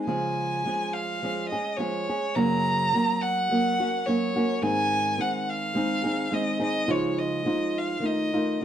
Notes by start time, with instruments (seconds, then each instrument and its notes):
0.06 nylon-string guitar C#3 F3 G#3 C#4 G#4, violin G#5
0.65 nylon-string guitar F3 G#3 C#4 G#4
0.93 violin F5
1.22 nylon-string guitar F3 G#3 C#4 G#4
1.49 nylon-string guitar C#4 G#4, violin D#5
1.54 nylon-string guitar G#3
1.77 nylon-string guitar F3 G#3 C#4 G#4, violin C#5
2.09 nylon-string guitar G#3 C#4 G#4
2.36 nylon-string guitar F#2 C#3 F#3 A#3 C#4 F#4, violin A#5
2.94 nylon-string guitar F#3 A#3 C#4 F#4
3.22 violin F#5
3.50 nylon-string guitar F#3 A#3 C#4 F#4
3.80 nylon-string guitar F#3 A#3 C#4 F#4
4.06 nylon-string guitar F#3 A#3 C#4 F#4, violin C#5
4.36 nylon-string guitar F#3 A#3 C#4 F#4
4.62 nylon-string guitar G#2 D#3 G#3 C4 D#4 G#4, violin G#5
5.18 nylon-string guitar G#3 C4 D#4 G#4, violin F#5
5.50 violin F5
5.75 nylon-string guitar G#3 C4 D#4 G#4
6.04 nylon-string guitar G#3 C4 D#4 G#4
6.31 nylon-string guitar G#3 C4 D#4 G#4, violin D#5
6.60 nylon-string guitar G#3 C4 D#4 G#4
6.64 violin D#5
6.88 nylon-string guitar C#3 F3 G#3 D#4 F4, violin C#5
7.19 violin D#5
7.44 nylon-string guitar F3 G#3 D#4 F4
7.78 violin F5
8.00 nylon-string guitar D#3 A3 D#4 F4
8.06 violin D#5
8.33 nylon-string guitar D#3 A3 D#4 F4
8.61 nylon-string guitar D#3 A3